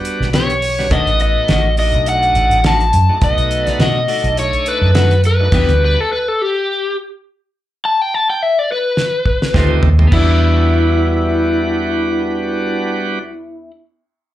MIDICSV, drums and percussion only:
0, 0, Header, 1, 2, 480
1, 0, Start_track
1, 0, Tempo, 576369
1, 759, Time_signature, 4, 2, 24, 8
1, 11942, End_track
2, 0, Start_track
2, 0, Title_t, "Drums"
2, 41, Note_on_c, 9, 42, 57
2, 124, Note_off_c, 9, 42, 0
2, 180, Note_on_c, 9, 38, 37
2, 263, Note_off_c, 9, 38, 0
2, 278, Note_on_c, 9, 42, 84
2, 283, Note_on_c, 9, 38, 103
2, 361, Note_off_c, 9, 42, 0
2, 366, Note_off_c, 9, 38, 0
2, 414, Note_on_c, 9, 42, 39
2, 497, Note_off_c, 9, 42, 0
2, 517, Note_on_c, 9, 46, 69
2, 600, Note_off_c, 9, 46, 0
2, 658, Note_on_c, 9, 38, 35
2, 741, Note_off_c, 9, 38, 0
2, 757, Note_on_c, 9, 42, 77
2, 759, Note_on_c, 9, 36, 107
2, 840, Note_off_c, 9, 42, 0
2, 842, Note_off_c, 9, 36, 0
2, 892, Note_on_c, 9, 42, 37
2, 975, Note_off_c, 9, 42, 0
2, 997, Note_on_c, 9, 42, 56
2, 1080, Note_off_c, 9, 42, 0
2, 1235, Note_on_c, 9, 42, 69
2, 1240, Note_on_c, 9, 38, 85
2, 1319, Note_off_c, 9, 42, 0
2, 1324, Note_off_c, 9, 38, 0
2, 1476, Note_on_c, 9, 46, 64
2, 1559, Note_off_c, 9, 46, 0
2, 1610, Note_on_c, 9, 42, 37
2, 1693, Note_off_c, 9, 42, 0
2, 1718, Note_on_c, 9, 42, 79
2, 1802, Note_off_c, 9, 42, 0
2, 1854, Note_on_c, 9, 42, 35
2, 1937, Note_off_c, 9, 42, 0
2, 1958, Note_on_c, 9, 42, 48
2, 2042, Note_off_c, 9, 42, 0
2, 2091, Note_on_c, 9, 42, 38
2, 2174, Note_off_c, 9, 42, 0
2, 2198, Note_on_c, 9, 42, 82
2, 2203, Note_on_c, 9, 38, 121
2, 2281, Note_off_c, 9, 42, 0
2, 2286, Note_off_c, 9, 38, 0
2, 2335, Note_on_c, 9, 42, 36
2, 2418, Note_off_c, 9, 42, 0
2, 2440, Note_on_c, 9, 42, 64
2, 2524, Note_off_c, 9, 42, 0
2, 2677, Note_on_c, 9, 42, 84
2, 2679, Note_on_c, 9, 36, 105
2, 2760, Note_off_c, 9, 42, 0
2, 2762, Note_off_c, 9, 36, 0
2, 2814, Note_on_c, 9, 42, 37
2, 2897, Note_off_c, 9, 42, 0
2, 2921, Note_on_c, 9, 42, 58
2, 3005, Note_off_c, 9, 42, 0
2, 3053, Note_on_c, 9, 42, 38
2, 3058, Note_on_c, 9, 38, 36
2, 3136, Note_off_c, 9, 42, 0
2, 3141, Note_off_c, 9, 38, 0
2, 3162, Note_on_c, 9, 42, 73
2, 3167, Note_on_c, 9, 38, 94
2, 3245, Note_off_c, 9, 42, 0
2, 3250, Note_off_c, 9, 38, 0
2, 3400, Note_on_c, 9, 46, 64
2, 3484, Note_off_c, 9, 46, 0
2, 3533, Note_on_c, 9, 42, 46
2, 3616, Note_off_c, 9, 42, 0
2, 3642, Note_on_c, 9, 42, 88
2, 3726, Note_off_c, 9, 42, 0
2, 3774, Note_on_c, 9, 42, 39
2, 3857, Note_off_c, 9, 42, 0
2, 3880, Note_on_c, 9, 42, 64
2, 3963, Note_off_c, 9, 42, 0
2, 4120, Note_on_c, 9, 42, 80
2, 4125, Note_on_c, 9, 38, 112
2, 4203, Note_off_c, 9, 42, 0
2, 4208, Note_off_c, 9, 38, 0
2, 4255, Note_on_c, 9, 42, 36
2, 4338, Note_off_c, 9, 42, 0
2, 4361, Note_on_c, 9, 42, 60
2, 4444, Note_off_c, 9, 42, 0
2, 4598, Note_on_c, 9, 42, 81
2, 4598, Note_on_c, 9, 49, 82
2, 4599, Note_on_c, 9, 36, 108
2, 4681, Note_off_c, 9, 42, 0
2, 4681, Note_off_c, 9, 49, 0
2, 4682, Note_off_c, 9, 36, 0
2, 4735, Note_on_c, 9, 42, 40
2, 4818, Note_off_c, 9, 42, 0
2, 7472, Note_on_c, 9, 38, 63
2, 7555, Note_off_c, 9, 38, 0
2, 7708, Note_on_c, 9, 36, 62
2, 7791, Note_off_c, 9, 36, 0
2, 7847, Note_on_c, 9, 38, 69
2, 7930, Note_off_c, 9, 38, 0
2, 7947, Note_on_c, 9, 36, 81
2, 7951, Note_on_c, 9, 38, 91
2, 8031, Note_off_c, 9, 36, 0
2, 8034, Note_off_c, 9, 38, 0
2, 8184, Note_on_c, 9, 43, 85
2, 8267, Note_off_c, 9, 43, 0
2, 8320, Note_on_c, 9, 43, 78
2, 8403, Note_off_c, 9, 43, 0
2, 8428, Note_on_c, 9, 36, 104
2, 8429, Note_on_c, 9, 49, 86
2, 8512, Note_off_c, 9, 36, 0
2, 8512, Note_off_c, 9, 49, 0
2, 11942, End_track
0, 0, End_of_file